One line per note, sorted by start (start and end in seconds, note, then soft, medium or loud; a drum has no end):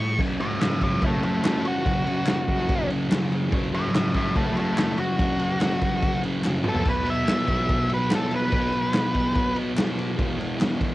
0.00 0.19 A2 loud
0.00 0.18 C#6 loud
0.18 0.59 F#2 medium
0.18 0.42 C#3 medium
0.18 0.39 F#3 loud
0.18 kick loud
0.18 crash loud
0.39 0.60 C#3 medium
0.39 0.63 F#3 medium
0.39 0.60 C#5 medium
0.39 0.61 E5 medium
0.39 ride medium
0.60 1.43 F#2 medium
0.60 0.83 C#3 loud
0.60 0.81 F#3 loud
0.60 0.81 C#5 medium
0.60 0.82 E5 medium
0.60 snare loud
0.60 clap medium
0.60 ride loud
0.81 1.25 C#3 medium
0.81 1.22 F#3 medium
0.81 1.02 C#5 medium
0.81 1.03 E5 medium
0.81 kick medium
0.81 ride medium
1.02 1.23 E4 medium
1.02 kick loud
1.02 ride loud
1.06 1.23 C#5 medium
1.22 1.46 F#3 medium
1.22 1.43 E4 medium
1.22 1.44 C#5 medium
1.22 ride medium
1.27 1.43 C#3 medium
1.43 1.84 F#2 medium
1.43 1.84 C#3 medium
1.43 1.87 F#3 medium
1.43 1.64 E4 medium
1.43 1.66 C#5 medium
1.43 snare loud
1.43 clap loud
1.43 ride loud
1.65 2.88 F#4 medium
1.65 ride medium
1.85 2.25 F#2 medium
1.85 2.06 C#3 medium
1.85 2.04 F#3 loud
1.85 kick loud
1.85 ride loud
2.05 2.26 C#3 medium
2.05 2.28 F#3 medium
2.05 ride medium
2.25 3.08 F#2 loud
2.25 2.47 C#3 loud
2.25 2.46 F#3 loud
2.25 snare loud
2.25 clap loud
2.25 ride loud
2.46 2.89 C#3 medium
2.46 2.87 F#3 medium
2.46 kick medium
2.46 ride medium
2.69 kick loud
2.69 ride loud
2.88 3.08 C#3 medium
2.88 3.11 F#3 medium
2.88 ride medium
3.09 3.49 F#2 medium
3.09 3.50 C#3 medium
3.09 3.53 F#3 medium
3.09 snare loud
3.09 clap loud
3.09 ride loud
3.32 ride medium
3.50 3.91 F#2 medium
3.50 3.74 C#3 loud
3.50 3.71 F#3 loud
3.50 kick loud
3.50 ride loud
3.71 3.92 C#3 medium
3.71 3.94 F#3 medium
3.71 3.93 C#5 medium
3.71 3.94 E5 medium
3.71 ride medium
3.92 4.35 F#2 loud
3.92 4.17 C#3 loud
3.92 4.15 F#3 loud
3.92 4.14 C#5 medium
3.92 4.15 E5 loud
3.92 snare loud
3.92 clap loud
3.92 ride loud
4.14 4.56 C#3 medium
4.14 4.53 F#3 medium
4.14 4.35 C#5 medium
4.14 4.36 E5 medium
4.14 kick medium
4.14 ride medium
4.36 4.56 E4 medium
4.36 4.56 C#5 medium
4.36 kick loud
4.36 ride loud
4.54 4.75 C#3 medium
4.54 4.78 F#3 medium
4.54 ride medium
4.59 4.78 E4 medium
4.59 4.77 C#5 medium
4.76 5.16 F#2 medium
4.76 5.18 C#3 medium
4.76 5.19 F#3 medium
4.76 4.98 E4 medium
4.76 4.98 C#5 medium
4.76 snare loud
4.76 clap loud
4.76 ride loud
4.98 6.20 F#4 medium
4.98 ride medium
5.17 5.58 F#2 medium
5.17 5.39 C#3 loud
5.17 5.37 F#3 medium
5.17 kick loud
5.17 ride loud
5.37 5.60 C#3 medium
5.37 5.62 F#3 medium
5.37 ride medium
5.59 6.02 F#2 loud
5.59 5.82 C#3 loud
5.59 5.79 F#3 loud
5.59 snare loud
5.59 clap medium
5.59 ride loud
5.80 6.24 C#3 medium
5.80 6.22 F#3 medium
5.80 kick medium
5.80 ride medium
6.02 kick loud
6.02 ride loud
6.22 6.43 C#3 medium
6.22 6.45 F#3 medium
6.22 ride medium
6.42 6.63 F#2 medium
6.42 6.64 C#3 medium
6.42 6.64 F#3 medium
6.42 snare medium
6.42 clap medium
6.63 6.83 B2 medium
6.63 6.85 F#3 medium
6.63 6.86 B3 loud
6.63 mid tom loud
6.69 6.87 A4 medium
6.75 floor tom medium
6.83 7.25 B2 medium
6.83 7.07 F#3 medium
6.83 7.04 B3 loud
6.83 kick loud
6.83 crash loud
6.90 7.08 B4 loud
7.04 7.26 F#3 medium
7.04 7.28 B3 medium
7.04 ride medium
7.10 7.90 E5 loud
7.26 8.10 B2 medium
7.26 7.49 F#3 loud
7.26 7.46 B3 loud
7.26 snare loud
7.26 clap medium
7.26 ride loud
7.46 7.91 F#3 medium
7.46 7.88 B3 medium
7.46 kick medium
7.46 ride medium
7.69 kick loud
7.69 ride loud
7.88 8.11 F#3 medium
7.88 8.13 B3 medium
7.88 ride medium
7.94 8.13 B4 loud
8.10 8.51 B2 medium
8.10 8.53 F#3 medium
8.10 8.55 B3 medium
8.10 snare loud
8.10 clap loud
8.10 ride loud
8.15 8.34 A4 medium
8.31 ride medium
8.35 9.55 B4 medium
8.52 8.93 B2 medium
8.52 8.75 F#3 loud
8.52 8.73 B3 loud
8.52 kick loud
8.52 ride loud
8.72 8.95 F#3 medium
8.72 8.97 B3 medium
8.72 ride medium
8.93 9.36 B2 loud
8.93 9.15 F#3 loud
8.93 snare loud
8.93 clap medium
8.93 ride loud
8.98 9.13 B3 loud
9.13 9.55 F#3 medium
9.13 9.52 B3 medium
9.13 kick medium
9.13 ride medium
9.35 kick loud
9.35 ride loud
9.53 9.76 F#3 medium
9.53 9.77 B3 medium
9.53 ride medium
9.75 10.17 B2 medium
9.75 10.18 F#3 medium
9.75 10.19 B3 medium
9.75 snare loud
9.75 clap loud
9.75 ride loud
9.99 ride medium
10.16 10.57 E2 loud
10.16 10.39 B2 medium
10.16 10.36 E3 loud
10.16 kick loud
10.16 ride loud
10.38 10.59 B2 medium
10.38 10.60 E3 medium
10.38 ride medium
10.58 10.95 E2 loud
10.58 10.81 B2 loud
10.58 10.78 E3 loud
10.58 snare loud
10.58 clap medium
10.58 ride loud
10.79 10.95 B2 medium
10.79 10.95 E3 medium
10.79 kick medium
10.79 ride medium